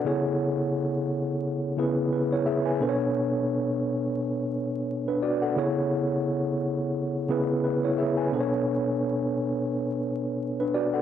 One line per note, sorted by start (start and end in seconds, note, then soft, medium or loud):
0.00 0.23 A4 medium
0.00 0.23 F#5 medium
0.04 1.10 C#3 medium
0.04 1.11 B3 medium
0.04 1.11 E4 medium
0.04 1.11 G#4 medium
0.04 1.12 C#5 medium
1.77 2.32 C#3 medium
1.77 2.32 B3 medium
1.77 2.12 E4 medium
1.77 2.13 G#4 medium
1.77 2.11 B4 medium
2.13 2.31 B4 medium
2.33 2.47 E4 medium
2.33 2.47 C#5 medium
2.46 2.65 G#4 medium
2.46 2.65 E5 medium
2.66 2.99 B4 medium
2.66 2.99 G#5 medium
2.80 3.86 B2 medium
2.80 3.86 B3 medium
2.80 3.87 D4 medium
2.80 3.87 A4 medium
2.80 2.89 C5 medium
2.89 3.91 C#5 medium
5.08 5.22 D4 medium
5.08 5.22 B4 medium
5.22 5.41 F#4 medium
5.22 5.41 D5 medium
5.42 5.75 A4 medium
5.42 5.75 F#5 medium
5.56 6.62 C#3 medium
5.56 6.62 B3 medium
5.56 6.63 E4 medium
5.56 6.63 G#4 medium
5.56 6.63 C#5 medium
7.29 7.84 C#3 medium
7.29 7.84 B3 medium
7.29 7.64 E4 medium
7.29 7.64 G#4 medium
7.29 7.63 B4 medium
7.64 7.82 B4 medium
7.84 7.99 E4 medium
7.84 7.98 C#5 medium
7.98 8.17 G#4 medium
7.98 8.17 E5 medium
8.17 8.51 B4 medium
8.17 8.50 G#5 medium
8.32 9.38 B2 medium
8.32 9.38 B3 medium
8.32 9.38 D4 medium
8.32 9.39 A4 medium
8.32 8.41 C5 medium
8.40 9.42 C#5 medium
10.60 10.74 D4 medium
10.60 10.74 B4 medium
10.74 10.93 F#4 medium
10.74 10.93 D5 medium
10.94 11.02 A4 medium
10.94 11.02 F#5 medium